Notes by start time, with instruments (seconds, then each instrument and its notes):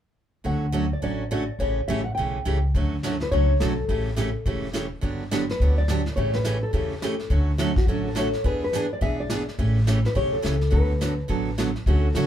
0.44 upright bass D2, steel-string acoustic guitar D3 F#3 A3 C#4 F#4, nylon-string guitar F#5
0.72 steel-string acoustic guitar D3 F#3 A3 C#4 F#4
0.93 nylon-string guitar D5
1.02 upright bass A1, steel-string acoustic guitar D3 F#3 A3 C#4 F#4, nylon-string guitar D5
1.31 steel-string acoustic guitar D3 F#3 A3 C#4 F#4, nylon-string guitar D5
1.59 upright bass A1, steel-string acoustic guitar C#3 E3 A3 C#4 G4, nylon-string guitar C#5
1.88 upright bass A1, steel-string acoustic guitar C#3 E3 A3 C#4 G4, nylon-string guitar E5
2.04 nylon-string guitar F#5
2.15 upright bass B1, steel-string acoustic guitar C#3 E3 A3, nylon-string guitar G5
2.19 steel-string acoustic guitar C#4 G4
2.45 upright bass C#2, steel-string acoustic guitar C#3 E3 A3 C#4 G4
2.74 upright bass D2, steel-string acoustic guitar D3 F#3 A3 C#4 F#4, brush sweep, kick
3.03 steel-string acoustic guitar D3 F#3 A3 C#4 F#4, snare, hi-hat pedal
3.20 nylon-string guitar B4, snare
3.31 upright bass C#2, steel-string acoustic guitar D3 F#3 A3 C#4 F#4, nylon-string guitar C#5, brush sweep, kick
3.60 upright bass B1, steel-string acoustic guitar D3 F#3 A3 C#4 F#4, nylon-string guitar A4, snare, hi-hat pedal
3.88 upright bass A1, steel-string acoustic guitar C#3 E3 A3 C#4 G4, nylon-string guitar A4, brush sweep, kick
4.16 steel-string acoustic guitar C#3 E3 A3 C#4 G4, snare, hi-hat pedal
4.46 upright bass E1, steel-string acoustic guitar C#3 E3 A3 C#4 G4, brush sweep, kick
4.73 steel-string acoustic guitar C#3 E3 A3 C#4 G4, snare, hi-hat pedal
5.01 upright bass G1, steel-string acoustic guitar D3 F#3 B3 D4 G4, brush sweep, kick
5.31 steel-string acoustic guitar D3 F#3 B3 D4 G4, snare, hi-hat pedal
5.49 nylon-string guitar B4, snare
5.60 upright bass D2, steel-string acoustic guitar D3 F#3 B3 D4 G4, brush sweep, kick
5.78 nylon-string guitar D5
5.88 steel-string acoustic guitar D3 F#3 B3 D4 G4, snare, hi-hat pedal
6.06 snare
6.16 upright bass A1, steel-string acoustic guitar C#3 E3 A3 C#4 G4, nylon-string guitar C#5, brush sweep, kick
6.33 nylon-string guitar B4, snare
6.44 steel-string acoustic guitar C#3 E3 A3 C#4 G4, snare, hi-hat pedal
6.63 nylon-string guitar A4
6.73 upright bass E2, steel-string acoustic guitar C#3 E3 A3 C#4 G4, nylon-string guitar A4, brush sweep, kick
7.02 steel-string acoustic guitar C#3 E3 A3 C#4 G4, snare, hi-hat pedal
7.19 snare
7.30 upright bass D2, steel-string acoustic guitar D3 F#3 A3 C#4 F#4, brush sweep, kick
7.58 steel-string acoustic guitar D3 F#3 A3 C#4 F#4, snare, hi-hat pedal
7.76 nylon-string guitar F#4, kick, snare
7.87 upright bass A1, steel-string acoustic guitar D3 F#3 A3 C#4 F#4, nylon-string guitar A4, brush sweep, kick
8.08 nylon-string guitar A4
8.15 steel-string acoustic guitar D3 F#3 A3 C#4 F#4, nylon-string guitar C#5, snare, hi-hat pedal
8.33 snare
8.44 upright bass E2, steel-string acoustic guitar E3 B3 D4 G#4, nylon-string guitar B4, brush sweep, kick
8.64 nylon-string guitar B4
8.73 steel-string acoustic guitar E3 B3 D4 G#4, snare, hi-hat pedal
8.93 nylon-string guitar D5
9.01 upright bass B1, steel-string acoustic guitar E3 B3 D4 G#4, nylon-string guitar E5, brush sweep, kick
9.20 nylon-string guitar D5
9.30 steel-string acoustic guitar E3 B3 D4 G#4, snare, hi-hat pedal
9.48 snare
9.59 upright bass A1, steel-string acoustic guitar C#3 E3 A3 C#4 G4, brush sweep, kick
9.87 steel-string acoustic guitar C#3 E3 A3 C#4 G4, snare, hi-hat pedal
10.05 nylon-string guitar B4, snare
10.15 upright bass B1, steel-string acoustic guitar C#3 E3 A3 C#4 G4, nylon-string guitar C#5, brush sweep, kick
10.33 nylon-string guitar A4
10.42 upright bass C#2, steel-string acoustic guitar C#3 E3 A3 C#4 G4, snare, hi-hat pedal
10.61 snare
10.70 upright bass D2, steel-string acoustic guitar D3 F#3 B3 F#4 A4, nylon-string guitar B4, brush sweep, kick
11.01 steel-string acoustic guitar D3 F#3 B3 F#4 A4, snare, hi-hat pedal
11.28 upright bass A1, steel-string acoustic guitar D3 F#3 B3 F#4 A4, brush sweep, kick
11.58 steel-string acoustic guitar D3 F#3 B3 F#4 A4, snare, hi-hat pedal
11.76 snare
11.86 upright bass D2, steel-string acoustic guitar D3 F#3 A3 C#4 F#4, nylon-string guitar A4, brush sweep, kick
12.14 upright bass C#2, steel-string acoustic guitar D3 F#3 A3 C#4 F#4, snare, hi-hat pedal